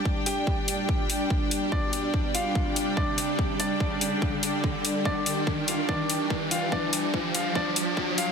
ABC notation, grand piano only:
X:1
M:4/4
L:1/8
Q:"Swing 16ths" 1/4=144
K:Cdor
V:1 name="Grand piano"
[Dd] [Gg]6- [Gg] | [Dd]3 [Ff]3 [Dd]2- | [Dd] [Dd]6- [Dd] | [Dd]3 [Ff] [Dd]3 [Ff] |
[Dd]3 [Ff] [Dd]3 [Ff] |]